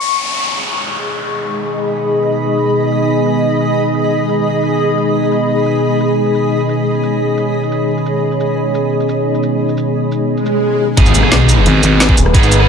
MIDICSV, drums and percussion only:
0, 0, Header, 1, 2, 480
1, 0, Start_track
1, 0, Key_signature, 5, "minor"
1, 0, Tempo, 342857
1, 4, Time_signature, 4, 2, 24, 8
1, 17760, End_track
2, 0, Start_track
2, 0, Title_t, "Drums"
2, 123, Note_on_c, 9, 82, 25
2, 243, Note_off_c, 9, 82, 0
2, 243, Note_on_c, 9, 82, 56
2, 383, Note_off_c, 9, 82, 0
2, 723, Note_on_c, 9, 82, 58
2, 863, Note_off_c, 9, 82, 0
2, 1683, Note_on_c, 9, 82, 55
2, 1823, Note_off_c, 9, 82, 0
2, 2163, Note_on_c, 9, 82, 53
2, 2303, Note_off_c, 9, 82, 0
2, 2643, Note_on_c, 9, 82, 56
2, 2783, Note_off_c, 9, 82, 0
2, 3003, Note_on_c, 9, 82, 28
2, 3123, Note_off_c, 9, 82, 0
2, 3123, Note_on_c, 9, 82, 56
2, 3263, Note_off_c, 9, 82, 0
2, 3483, Note_on_c, 9, 82, 26
2, 3603, Note_off_c, 9, 82, 0
2, 3603, Note_on_c, 9, 82, 55
2, 3743, Note_off_c, 9, 82, 0
2, 3964, Note_on_c, 9, 82, 26
2, 4084, Note_off_c, 9, 82, 0
2, 4084, Note_on_c, 9, 82, 52
2, 4224, Note_off_c, 9, 82, 0
2, 4563, Note_on_c, 9, 82, 57
2, 4703, Note_off_c, 9, 82, 0
2, 4923, Note_on_c, 9, 82, 27
2, 5043, Note_off_c, 9, 82, 0
2, 5043, Note_on_c, 9, 82, 53
2, 5183, Note_off_c, 9, 82, 0
2, 5403, Note_on_c, 9, 82, 26
2, 5523, Note_off_c, 9, 82, 0
2, 5523, Note_on_c, 9, 82, 54
2, 5663, Note_off_c, 9, 82, 0
2, 5883, Note_on_c, 9, 82, 26
2, 6003, Note_off_c, 9, 82, 0
2, 6003, Note_on_c, 9, 82, 53
2, 6143, Note_off_c, 9, 82, 0
2, 6483, Note_on_c, 9, 82, 56
2, 6623, Note_off_c, 9, 82, 0
2, 6844, Note_on_c, 9, 82, 27
2, 6963, Note_off_c, 9, 82, 0
2, 6963, Note_on_c, 9, 82, 53
2, 7103, Note_off_c, 9, 82, 0
2, 7323, Note_on_c, 9, 82, 25
2, 7443, Note_off_c, 9, 82, 0
2, 7443, Note_on_c, 9, 82, 56
2, 7583, Note_off_c, 9, 82, 0
2, 7804, Note_on_c, 9, 82, 26
2, 7923, Note_off_c, 9, 82, 0
2, 7923, Note_on_c, 9, 82, 56
2, 8063, Note_off_c, 9, 82, 0
2, 8404, Note_on_c, 9, 82, 63
2, 8544, Note_off_c, 9, 82, 0
2, 8763, Note_on_c, 9, 82, 29
2, 8884, Note_off_c, 9, 82, 0
2, 8884, Note_on_c, 9, 82, 56
2, 9024, Note_off_c, 9, 82, 0
2, 9243, Note_on_c, 9, 82, 28
2, 9363, Note_off_c, 9, 82, 0
2, 9363, Note_on_c, 9, 82, 57
2, 9503, Note_off_c, 9, 82, 0
2, 9723, Note_on_c, 9, 82, 26
2, 9843, Note_off_c, 9, 82, 0
2, 9843, Note_on_c, 9, 82, 60
2, 9983, Note_off_c, 9, 82, 0
2, 10323, Note_on_c, 9, 82, 65
2, 10463, Note_off_c, 9, 82, 0
2, 10683, Note_on_c, 9, 82, 29
2, 10804, Note_off_c, 9, 82, 0
2, 10804, Note_on_c, 9, 82, 59
2, 10944, Note_off_c, 9, 82, 0
2, 11163, Note_on_c, 9, 82, 29
2, 11284, Note_off_c, 9, 82, 0
2, 11284, Note_on_c, 9, 82, 59
2, 11424, Note_off_c, 9, 82, 0
2, 11643, Note_on_c, 9, 82, 29
2, 11764, Note_off_c, 9, 82, 0
2, 11764, Note_on_c, 9, 82, 62
2, 11904, Note_off_c, 9, 82, 0
2, 12243, Note_on_c, 9, 82, 64
2, 12383, Note_off_c, 9, 82, 0
2, 12603, Note_on_c, 9, 82, 29
2, 12723, Note_off_c, 9, 82, 0
2, 12723, Note_on_c, 9, 82, 58
2, 12863, Note_off_c, 9, 82, 0
2, 13083, Note_on_c, 9, 82, 29
2, 13203, Note_off_c, 9, 82, 0
2, 13203, Note_on_c, 9, 82, 59
2, 13343, Note_off_c, 9, 82, 0
2, 13563, Note_on_c, 9, 82, 28
2, 13683, Note_off_c, 9, 82, 0
2, 13683, Note_on_c, 9, 82, 56
2, 13823, Note_off_c, 9, 82, 0
2, 14163, Note_on_c, 9, 82, 62
2, 14303, Note_off_c, 9, 82, 0
2, 14523, Note_on_c, 9, 82, 28
2, 14643, Note_off_c, 9, 82, 0
2, 14643, Note_on_c, 9, 82, 60
2, 14783, Note_off_c, 9, 82, 0
2, 15363, Note_on_c, 9, 42, 100
2, 15364, Note_on_c, 9, 36, 116
2, 15483, Note_on_c, 9, 82, 27
2, 15503, Note_off_c, 9, 42, 0
2, 15504, Note_off_c, 9, 36, 0
2, 15603, Note_off_c, 9, 82, 0
2, 15603, Note_on_c, 9, 42, 67
2, 15603, Note_on_c, 9, 82, 60
2, 15723, Note_on_c, 9, 37, 48
2, 15743, Note_off_c, 9, 42, 0
2, 15743, Note_off_c, 9, 82, 0
2, 15843, Note_on_c, 9, 38, 126
2, 15843, Note_on_c, 9, 42, 96
2, 15863, Note_off_c, 9, 37, 0
2, 15983, Note_off_c, 9, 38, 0
2, 15983, Note_off_c, 9, 42, 0
2, 16083, Note_on_c, 9, 42, 70
2, 16083, Note_on_c, 9, 82, 61
2, 16223, Note_off_c, 9, 42, 0
2, 16223, Note_off_c, 9, 82, 0
2, 16323, Note_on_c, 9, 42, 97
2, 16463, Note_off_c, 9, 42, 0
2, 16563, Note_on_c, 9, 42, 67
2, 16563, Note_on_c, 9, 82, 60
2, 16703, Note_off_c, 9, 42, 0
2, 16703, Note_off_c, 9, 82, 0
2, 16803, Note_on_c, 9, 38, 123
2, 16803, Note_on_c, 9, 42, 100
2, 16924, Note_on_c, 9, 36, 104
2, 16943, Note_off_c, 9, 38, 0
2, 16943, Note_off_c, 9, 42, 0
2, 17043, Note_on_c, 9, 42, 70
2, 17043, Note_on_c, 9, 82, 60
2, 17064, Note_off_c, 9, 36, 0
2, 17164, Note_on_c, 9, 37, 52
2, 17183, Note_off_c, 9, 42, 0
2, 17183, Note_off_c, 9, 82, 0
2, 17283, Note_on_c, 9, 42, 101
2, 17284, Note_on_c, 9, 36, 127
2, 17304, Note_off_c, 9, 37, 0
2, 17404, Note_on_c, 9, 82, 25
2, 17423, Note_off_c, 9, 42, 0
2, 17424, Note_off_c, 9, 36, 0
2, 17524, Note_off_c, 9, 82, 0
2, 17524, Note_on_c, 9, 42, 70
2, 17524, Note_on_c, 9, 82, 57
2, 17644, Note_on_c, 9, 37, 49
2, 17664, Note_off_c, 9, 42, 0
2, 17664, Note_off_c, 9, 82, 0
2, 17760, Note_off_c, 9, 37, 0
2, 17760, End_track
0, 0, End_of_file